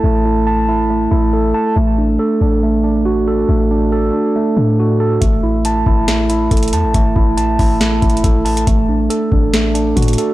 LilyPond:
<<
  \new Staff \with { instrumentName = "Tine electric piano" } { \time 4/4 \key d \mixolydian \tempo 4 = 139 <a e' a' a''>8 e'8 a''8 e'8 a8 e'8 a'8 a''8 | a8 d'8 a'8 d'8 a8 d'8 fis'8 a'8 | a8 d'8 a'8 d'8 a8 d'8 fis'8 a'8 | a8 e'8 a''8 e'8 a8 e'8 a'8 a''8 |
a8 e'8 a''8 e'8 a8 e'8 a'8 a''8 | a8 d'8 a'8 d'8 a8 d'8 fis'8 a'8 | }
  \new Staff \with { instrumentName = "808-style bass" } { \clef bass \time 4/4 \key d \mixolydian a,,2~ a,,8 a,,4 r8 | a,,4 r8 a,,2~ a,,8 | a,,4. r4 a,4. | a,,4. a,,4. a,,8 e,16 a,,16 |
a,,8 a,,4 a,,4 a,,8 a,,4 | a,,4 r8 a,,4. a,8 r8 | }
  \new DrumStaff \with { instrumentName = "Drums" } \drummode { \time 4/4 r4 r4 r4 r4 | r4 r4 r4 r4 | r4 r4 r4 r4 | <hh bd>4 hh8 bd8 <hh sn>8 hh8 <hh bd>32 hh32 hh32 hh32 hh8 |
<hh bd>8 bd8 hh8 <hho bd>8 \tuplet 3/2 { <hh sn>16 r16 r16 <hh bd>16 hh16 hh16 } <hh bd>8 <hh hho>16 hh16 | <hh bd>4 hh8 bd8 <hh sn>8 hh8 <hh bd>32 hh32 hh32 hh32 hh8 | }
>>